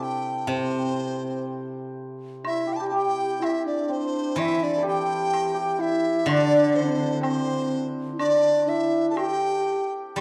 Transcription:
Already playing: guzheng C3, hammered dulcimer C4 D4 E4 G4 A4
0.03 dizi G5
0.47 guzheng C3, hammered dulcimer C4, dizi C5
0.56 hammered dulcimer C4
0.64 hammered dulcimer C4
0.72 hammered dulcimer C4
0.79 hammered dulcimer C4
0.85 hammered dulcimer C4
0.93 hammered dulcimer C4
1.01 hammered dulcimer C4
1.08 hammered dulcimer C4
1.17 hammered dulcimer C4
1.24 hammered dulcimer C4
1.30 hammered dulcimer C4
2.44 hammered dulcimer E4, xiao E4, dizi E5, high woodblock
2.67 hammered dulcimer G4
2.73 dizi G5 A5
2.80 hammered dulcimer G4, xiao G4
2.86 dizi G5 A5
2.92 hammered dulcimer G4, xiao G4
2.96 dizi G5
3.40 hammered dulcimer E4, xiao E4, dizi E5, high woodblock, low woodblock
3.66 xiao D4, dizi D5
3.89 hammered dulcimer C4, dizi C5
4.35 guzheng E3, hammered dulcimer E4, xiao E4, high woodblock
4.39 dizi E5
4.62 xiao D4, dizi D5
4.77 hammered dulcimer A4
4.83 hammered dulcimer G4, xiao G4
4.88 dizi G5
5.34 high woodblock, low woodblock
5.54 hammered dulcimer G4, xiao G4
5.74 dizi G5
5.78 hammered dulcimer E4, xiao E4, dizi E5
6.21 xiao E4
6.26 guzheng D3, hammered dulcimer D4, xiao D4, dizi D5, high woodblock
6.75 xiao C4, dizi C5
7.21 hammered dulcimer C4, xiao C4, dizi C5, high woodblock, low woodblock
8.12 xiao E4
8.18 xiao D4, hammered dulcimer D4, dizi D5, high woodblock
8.67 xiao E4, dizi E5
9.10 hammered dulcimer A4, dizi A5
9.16 xiao G4, hammered dulcimer G4, dizi G5, high woodblock, low woodblock
10.16 guzheng G3, xiao G4, dizi G5

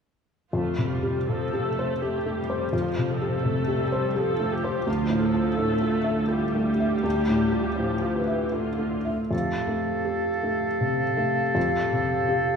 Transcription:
0.53 felt piano F2, cello section F2, viola section A3 F4
0.78 felt piano C3
0.90 viola section G3
1.03 felt piano G4
1.28 felt piano C3, viola section F3 A4
1.54 felt piano G4
1.66 viola section A3
1.79 felt piano C5
2.00 viola section A3 G4, felt piano G4
2.26 felt piano A3
2.38 viola section G3
2.50 felt piano C5
2.73 felt piano F2, viola section F3 F4
2.98 felt piano C3
3.10 viola section A4
3.22 felt piano G4
3.45 felt piano C3, viola section A3
3.68 felt piano G4
3.82 viola section G3
3.92 felt piano C5
4.16 viola section F3 A4, felt piano G4
4.40 felt piano A3
4.54 viola section G4
4.64 felt piano C5
4.87 felt piano D2, cello section D2, viola section F3 F4
5.10 felt piano A2
5.23 viola section A4
5.34 felt piano F4
5.58 felt piano A2, viola section A3
5.81 felt piano F4
6.04 felt piano E5
6.29 viola section G3 G4, felt piano F4
6.55 felt piano A3
6.80 felt piano E5
7.03 felt piano D2
7.28 felt piano A2
7.52 felt piano F4
7.76 felt piano A2, viola section F3
8.02 felt piano F4
8.17 viola section E3
8.27 felt piano E5
8.52 viola section D3 F4, felt piano F4
8.78 felt piano A3
9.05 felt piano E5
9.31 felt piano F2, clarinet G4, oboe A4, flute section F5
9.68 felt piano A3
10.05 felt piano G4
10.43 felt piano A3
10.81 felt piano C3
11.17 felt piano A3
11.55 felt piano F2
11.93 felt piano C3
12.29 felt piano G4

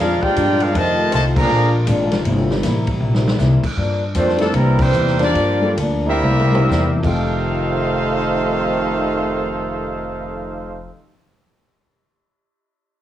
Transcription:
Already playing: steel-string acoustic guitar A#2, trombone section D3 F3 A#3 F4
0.00 upright bass F2, steel-string acoustic guitar F3 G#3 D4, trombone section G#3 D4 F4, trumpet section D4 G#4 A#4 F5
0.22 trombone section G#3 D4 G4, trumpet section F4 A#4 D5 G5, muted upright bass stroke, kick
0.36 upright bass G2, steel-string acoustic guitar A#2 F3 G#3 D4, kick, hi-hat pedal, ride
0.60 trombone section G#3 D4 F4, trumpet section D4 G#4 A#4 F5, ride
0.73 steel-string acoustic guitar F2 D#3 A3 C4, upright bass F2, trombone section C3 D#3 A3 C4 F4, kick, ride
0.77 trumpet section F4 C5 D#5 A5
1.11 upright bass C2, steel-string acoustic guitar F2 D#3 A3 C4, trombone section C3 D#3 A3, trumpet section F4 C5 D#5 A5, kick, hi-hat pedal, ride
1.36 trombone section D3 F3 A#3, trumpet section G#4 D5 F5 A#5, kick, crash
1.48 upright bass A#1, steel-string acoustic guitar A#2 F3 G#3 D4, trombone section D3 G#3 A#3
1.86 upright bass G#1, steel-string acoustic guitar A#2 F3 G#3 D4, kick, hi-hat pedal, ride
2.11 snare, ride
2.24 upright bass G1, steel-string acoustic guitar C3 G3 A#3 E4, trombone section C3 G3 E4, kick, ride
2.51 snare
2.62 upright bass A1, steel-string acoustic guitar C3 G3 A#3 E4, kick, snare, hi-hat pedal, ride
2.87 kick, ride
2.99 upright bass A#1, steel-string acoustic guitar C3 G3 A#3 E4
3.14 snare
3.27 snare
3.37 upright bass C2, steel-string acoustic guitar C3 G3 A#3 E4, snare, hi-hat pedal
3.63 kick, crash
3.76 steel-string acoustic guitar G2 F3 A#3 D4, upright bass G2, kick
4.15 upright bass F2, steel-string acoustic guitar G2 F3 A#3 D4, trumpet section A3 D4 F4 C5, trombone section C4, kick, hi-hat pedal, ride
4.29 snare
4.37 upright piano G3 A#3 C4 D4 E4, trombone section A3, trumpet section A#3 D4 A4, snare, ride
4.53 upright bass C2, steel-string acoustic guitar C3 G3 A#3 E4, trombone section E3 G3 A#3, trumpet section G3 C4 E4 A#4, kick, ride
4.78 trombone section E3 G3 C4, trumpet section A#3 E4 G4 C5, kick, crash
4.92 upright bass E2, steel-string acoustic guitar C3 G3 A#3 E4, hi-hat pedal
5.07 snare
5.19 trombone section F3 A#3 D4, snare, ride
5.24 trumpet section A#3 F4 G4 D5
5.35 upright bass G2, steel-string acoustic guitar G2 F3 A#3 D4, kick, ride
5.61 upright piano G3 A#3 D4 F4 A4
5.77 upright bass D2, steel-string acoustic guitar G2 F3 A#3 D4, kick, hi-hat pedal, ride
6.06 trombone section G3 A#3 E4, trumpet section C4 G4 A#4 E5
6.22 upright bass C2, steel-string acoustic guitar C3 G3 A#3 E4, mid tom
6.40 mid tom
6.51 upright piano G3 C4 D4 E4 A#4, mid tom
6.69 upright bass E2, steel-string acoustic guitar C3 G3 A#3 E4, snare, hi-hat pedal
6.96 upright piano F2 F3, steel-string acoustic guitar F3
7.02 upright bass F1, trombone section F2 C3 D#3 A3, steel-string acoustic guitar C4, upright piano D#4 G4, trumpet section F5, kick, crash
7.06 trumpet section D#4 A4 C5, steel-string acoustic guitar D#4, upright piano A4
7.14 steel-string acoustic guitar A4

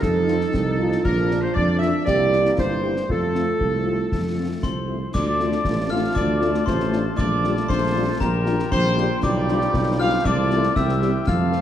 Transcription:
Already playing: trombone section F3 D#4
0.00 tuba F2, euphonium F4, trumpet section A4, woodwind section A4, concert bass drum, snare
0.27 french horn section C4 D#4 F4, euphonium D#4, snare
0.41 snare
0.53 tuba C2, euphonium C4, concert bass drum, snare
0.78 french horn section C4 D#4 F4, euphonium F4
0.92 snare
1.04 tuba A#1, trombone section F3 D4, woodwind section A#4, trumpet section A#4, concert bass drum, crash
1.31 french horn section A#3 D4 F4, snare
1.41 woodwind section C5, trumpet section C5
1.54 tuba F2, euphonium D4, woodwind section D5, trumpet section D5, concert bass drum
1.79 french horn section A#3 D4 F4, woodwind section E5, snare
1.83 trumpet section E5
2.06 tuba C2, trombone section E3 A#3, euphonium G4, woodwind section D5, trumpet section D5, concert bass drum, snare
2.33 french horn section A#3 C4 E4, snare
2.46 snare
2.57 tuba G1, euphonium E4, woodwind section C5, trumpet section C5, concert bass drum, snare
2.82 french horn section A#3 C4 E4, euphonium G4
2.97 snare
3.07 tuba F2, trombone section F3 A3, euphonium F4, woodwind section A4, concert bass drum
3.11 trumpet section A4
3.35 french horn section A3 C4 F4, snare
3.60 tuba C2, concert bass drum
3.86 french horn section A3 C4 F4
4.11 tuba F2, concert bass drum, snare
4.38 french horn section A3 C4 F4
4.63 tuba C2, trumpet section C5, piccolo C6, glockenspiel C6, concert bass drum, snare
4.88 french horn section A3 C4 F4
5.13 tuba D2, trombone section F3 A3, woodwind section F4 A5, trumpet section D5, piccolo D6, glockenspiel D6, concert bass drum, snare, crash
5.39 french horn section A3 D4 F4, snare
5.52 snare
5.65 tuba A1, concert bass drum, snare
5.90 french horn section A3 D4 F4, trumpet section F5, glockenspiel F6, piccolo F6
6.15 tuba D2, trumpet section D5, glockenspiel D6, piccolo D6, concert bass drum, snare
6.41 french horn section A3 D4 F4, snare
6.54 snare
6.66 tuba A1, trumpet section C5, glockenspiel C6, piccolo C6, concert bass drum, snare
6.80 snare
6.92 french horn section A3 D4 F4, snare
7.17 tuba A#1, trombone section F3, woodwind section F4, trumpet section D5, glockenspiel D6, piccolo D6, concert bass drum, snare
7.44 french horn section G3 D4 F4, snare
7.57 snare
7.68 tuba A#1, trumpet section C5, glockenspiel C6, piccolo C6, concert bass drum, snare
7.95 french horn section G3 D4 F4
8.20 tuba A#1, trombone section G3, trumpet section A#4, woodwind section G5, piccolo A#5, glockenspiel A#5, concert bass drum, snare
8.46 french horn section G3 D4 F4, snare
8.59 snare
8.71 tuba A#1, trumpet section C5, piccolo C6, glockenspiel C6, concert bass drum, snare
8.85 snare
8.97 french horn section G3 D4 F4, snare
9.23 tuba B1, trombone section F3 G3, woodwind section F4 G5, trumpet section D5, glockenspiel D6, piccolo D6, concert bass drum, snare, crash
9.49 french horn section G3 D4 F4, snare
9.61 snare
9.74 tuba B1, concert bass drum, snare
9.99 french horn section G3 D4 F4, trumpet section F5, piccolo F6, glockenspiel F6
10.25 tuba C2, trombone section A3, trumpet section D5, woodwind section A5, glockenspiel D6, piccolo D6, concert bass drum, snare
10.51 french horn section A3 C4 F4, snare
10.63 snare
10.76 tuba C2, trombone section G3 C4, woodwind section C4 G5, trumpet section E5, piccolo E6, glockenspiel E6, concert bass drum, snare
10.89 snare
11.02 french horn section G3 C4 G4, snare
11.26 tuba F2, trombone section A3 C4, woodwind section C4 A5, trumpet section F5, glockenspiel F6, piccolo F6, concert bass drum, snare
11.52 french horn section A3 C4 F4, snare

